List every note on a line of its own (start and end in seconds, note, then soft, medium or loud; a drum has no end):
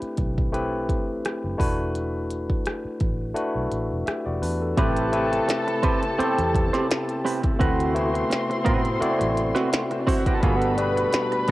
0.00 0.11 A3 medium
0.00 0.15 C4 medium
0.00 0.12 E4 medium
0.00 0.12 G4 medium
0.00 0.12 B4 medium
0.00 muted fingered electric bass stroke soft
0.00 closed hi-hat soft
0.17 0.89 B1 medium
0.17 kick medium
0.17 closed hi-hat medium
0.38 kick medium
0.52 1.53 A3 medium
0.52 1.53 C4 medium
0.52 1.53 E4 medium
0.52 1.53 G4 medium
0.52 1.54 B4 medium
0.52 closed hi-hat medium
0.89 1.20 A1 medium
0.89 kick medium
0.89 closed hi-hat medium
1.25 cross-stick medium
1.25 closed hi-hat medium
1.44 1.58 F#1 medium
1.58 2.52 E1 medium
1.58 2.72 A3 medium
1.58 2.73 D4 medium
1.58 2.73 E4 medium
1.58 2.73 F#4 medium
1.58 2.73 B4 medium
1.58 kick medium
1.58 open hi-hat medium
1.95 closed hi-hat medium
2.31 closed hi-hat medium
2.50 kick medium
2.66 cross-stick medium
2.66 closed hi-hat medium
2.85 muted fingered electric bass stroke soft
3.00 3.32 A1 medium
3.00 kick medium
3.00 closed hi-hat medium
3.34 4.35 A3 medium
3.34 4.06 D4 medium
3.34 4.06 E4 medium
3.34 4.07 F#4 medium
3.34 4.07 B4 medium
3.34 closed hi-hat medium
3.55 3.69 B1 medium
3.72 3.88 A1 medium
3.72 closed hi-hat medium
3.91 4.05 E1 medium
4.06 4.25 G4 soft
4.06 4.25 E5 medium
4.06 cross-stick medium
4.06 closed hi-hat medium
4.26 4.40 E1 medium
4.26 4.42 F#4 soft
4.26 4.41 D5 medium
4.42 4.73 E2 medium
4.42 4.61 D4 medium
4.42 4.60 B4 medium
4.42 open hi-hat medium
4.62 4.95 A4 medium
4.77 5.39 A1 medium
4.77 10.39 C3 medium
4.77 5.03 A3 medium
4.77 10.39 A3 medium
4.77 5.03 C4 medium
4.77 5.10 C4 medium
4.77 5.03 E4 medium
4.77 7.57 G4 medium
4.77 5.03 G4 medium
4.77 5.11 G4 medium
4.77 7.21 A4 medium
4.77 5.03 B4 medium
4.77 5.11 B4 medium
4.77 7.21 A5 loud
4.77 kick loud
4.77 closed hi-hat medium
4.97 closed hi-hat medium
5.12 5.87 A3 medium
5.12 5.87 C4 medium
5.12 5.88 E4 medium
5.12 5.88 G4 medium
5.12 5.88 B4 medium
5.12 closed hi-hat medium
5.32 muted clean electric guitar stroke soft
5.32 closed hi-hat medium
5.48 muted clean electric guitar stroke soft
5.48 snare loud
5.48 closed hi-hat medium
5.68 muted clean electric guitar stroke soft
5.68 closed hi-hat soft
5.83 6.04 C4 medium
5.83 6.02 G4 medium
5.83 6.01 B4 medium
5.83 kick medium
5.83 closed hi-hat medium
6.02 muted clean electric guitar stroke soft
6.02 closed hi-hat medium
6.18 7.18 A3 medium
6.18 6.26 B3 medium
6.18 6.39 C4 medium
6.18 7.19 E4 medium
6.18 6.39 G4 medium
6.18 7.19 G4 medium
6.18 7.19 A4 medium
6.18 6.40 C5 medium
6.18 muted fingered electric bass stroke soft
6.18 closed hi-hat medium
6.25 7.22 C4 medium
6.39 6.69 E2 medium
6.39 closed hi-hat medium
6.54 muted clean electric guitar stroke soft
6.54 kick medium
6.54 closed hi-hat medium
6.73 6.88 C4 soft
6.73 6.88 G4 soft
6.73 6.87 C5 medium
6.73 snare soft
6.73 closed hi-hat medium
6.89 muted clean electric guitar stroke soft
6.89 snare loud
6.89 closed hi-hat medium
7.09 closed hi-hat medium
7.25 7.41 C4 medium
7.25 7.41 G4 medium
7.25 7.42 B4 medium
7.25 open hi-hat medium
7.43 muted clean electric guitar stroke soft
7.43 kick medium
7.43 closed hi-hat medium
7.59 8.22 D2 loud
7.59 7.85 A3 medium
7.59 7.85 C4 medium
7.59 7.93 C4 medium
7.59 9.80 C4 medium
7.59 7.86 E4 medium
7.59 10.41 E4 medium
7.59 7.86 F#4 medium
7.59 7.93 F#4 medium
7.59 11.51 F#4 medium
7.59 7.86 B4 medium
7.59 7.93 B4 medium
7.59 9.81 C6 medium
7.59 kick loud
7.59 closed hi-hat medium
7.80 closed hi-hat medium
7.95 8.70 A3 medium
7.95 8.71 B3 medium
7.95 8.70 C4 medium
7.95 8.70 E4 medium
7.95 8.70 F#4 medium
7.95 closed hi-hat medium
8.14 muted clean electric guitar stroke soft
8.14 closed hi-hat medium
8.30 muted clean electric guitar stroke soft
8.30 snare loud
8.30 closed hi-hat medium
8.50 muted clean electric guitar stroke soft
8.50 closed hi-hat soft
8.65 8.97 A2 medium
8.65 8.87 C4 medium
8.65 8.83 F#4 medium
8.65 8.83 B4 medium
8.65 kick medium
8.65 closed hi-hat medium
8.84 muted clean electric guitar stroke soft
8.84 closed hi-hat soft
9.00 10.01 A3 medium
9.00 10.01 C4 medium
9.00 10.01 E4 medium
9.00 10.01 F#4 medium
9.00 10.01 D5 medium
9.00 muted clean electric guitar stroke soft
9.00 muted fingered electric bass stroke soft
9.00 closed hi-hat medium
9.19 9.52 A1 medium
9.19 muted clean electric guitar stroke soft
9.19 closed hi-hat medium
9.37 closed hi-hat medium
9.55 9.71 C4 medium
9.55 9.71 F#4 medium
9.55 9.72 B4 medium
9.55 snare soft
9.55 closed hi-hat medium
9.72 muted clean electric guitar stroke soft
9.72 snare loud
9.72 closed hi-hat medium
9.91 9.99 C4 medium
9.91 9.99 C5 medium
9.91 muted clean electric guitar stroke soft
9.91 closed hi-hat medium
10.00 10.08 D4 medium
10.00 10.08 D5 medium
10.07 10.23 C4 medium
10.07 10.17 E4 medium
10.07 10.24 F#4 medium
10.07 10.24 C5 medium
10.07 10.18 E5 medium
10.07 kick loud
10.07 open hi-hat medium
10.17 10.27 F#4 medium
10.17 10.27 F#5 medium
10.26 10.41 C4 soft
10.26 10.40 F#4 medium
10.26 10.35 G4 medium
10.26 10.40 B4 medium
10.26 10.35 G5 medium
10.26 kick medium
10.26 closed hi-hat medium
10.34 10.43 A4 medium
10.34 10.43 A5 medium
10.42 11.04 G1 loud
10.42 11.51 B2 medium
10.42 10.68 G3 medium
10.42 11.51 A3 medium
10.42 10.57 A#3 medium
10.42 10.68 B3 medium
10.42 10.68 D4 medium
10.42 10.56 F4 medium
10.42 10.69 F#4 medium
10.42 10.57 G#4 medium
10.42 10.69 A4 medium
10.42 11.51 B4 loud
10.42 11.51 B5 loud
10.42 kick loud
10.42 closed hi-hat medium
10.56 10.75 B3 medium
10.56 10.76 F#4 medium
10.56 10.76 A4 medium
10.62 closed hi-hat medium
10.77 11.51 G3 medium
10.77 11.51 B3 medium
10.77 11.51 D4 medium
10.77 11.51 F#4 medium
10.77 11.51 B4 medium
10.77 closed hi-hat medium
10.97 muted clean electric guitar stroke soft
10.97 closed hi-hat medium
11.13 muted clean electric guitar stroke soft
11.13 snare loud
11.13 closed hi-hat medium
11.32 muted clean electric guitar stroke soft
11.32 closed hi-hat soft
11.48 closed hi-hat medium